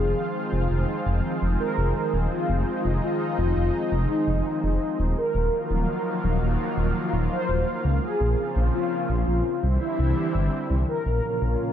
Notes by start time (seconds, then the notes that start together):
Already playing: D#3 F3 G#3 C4 F4 G#4
0.00 F1
0.53 F1
0.71 F1
1.06 F1
1.42 F1
1.60 A#4
1.78 F1
2.14 D#1
2.31 D#4 F4
2.49 F1
2.85 F1
3.03 F4
3.38 F1
3.56 F1
3.92 F1
4.10 D#4
4.28 F1
4.64 F1
4.99 D#1
5.17 D#3 F3 F#3 A#3 F4 A#4
5.35 D#1
5.71 D#1
6.24 D#1
6.42 D#1
6.78 D#1
7.13 D#1
7.32 C5
7.49 D#1
7.85 C#2
8.03 C#3 F3 C4 G#4
8.20 A#1
8.56 A#1
8.74 F4
9.10 A#1
9.28 A#1
9.46 D3 E3 G3 C4 E4
9.63 C2
9.81 E4
9.99 C2
10.35 G1
10.70 C2
10.88 A#2 C#3 F3 C#4 F4 A#4
11.06 A#1
11.42 A#1